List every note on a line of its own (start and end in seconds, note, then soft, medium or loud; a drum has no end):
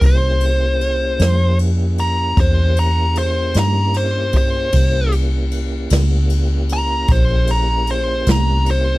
0.01 1.16 C2 medium
0.01 4.70 A#3 medium
0.01 4.70 C#4 medium
0.01 4.70 E4 medium
0.01 4.70 G4 medium
0.01 kick loud
0.01 ride medium
0.06 1.57 C5 loud
0.41 ride medium
0.81 ride medium
1.19 2.34 F2 medium
1.19 snare loud
1.19 ride medium
1.59 ride medium
1.98 2.38 A#5 loud
1.98 ride medium
2.37 3.52 E2 medium
2.37 2.77 C5 medium
2.37 kick loud
2.37 ride medium
2.77 3.16 A#5 medium
2.77 ride medium
3.16 3.56 C5 medium
3.16 ride medium
3.54 4.70 G2 medium
3.54 snare loud
3.54 ride medium
3.59 3.96 A#5 medium
3.94 4.34 C5 medium
3.94 ride medium
4.33 kick medium
4.33 ride medium
4.37 5.12 C5 loud
4.72 5.88 C2 medium
4.72 8.98 A#3 medium
4.72 8.98 C#4 medium
4.72 8.98 E4 medium
4.72 8.98 G4 medium
4.72 kick loud
4.72 ride medium
5.12 ride medium
5.51 ride medium
5.90 7.07 C#2 medium
5.90 snare loud
5.90 ride medium
6.30 ride medium
6.69 7.10 A#5 loud
6.69 ride medium
7.08 8.24 A#1 medium
7.08 7.49 C5 loud
7.08 kick loud
7.08 ride medium
7.47 7.89 A#5 medium
7.47 ride medium
7.87 8.28 C5 medium
7.87 ride medium
8.26 8.98 C2 loud
8.26 snare loud
8.26 ride medium
8.31 8.68 A#5 medium
8.66 ride medium
8.71 8.98 C5 medium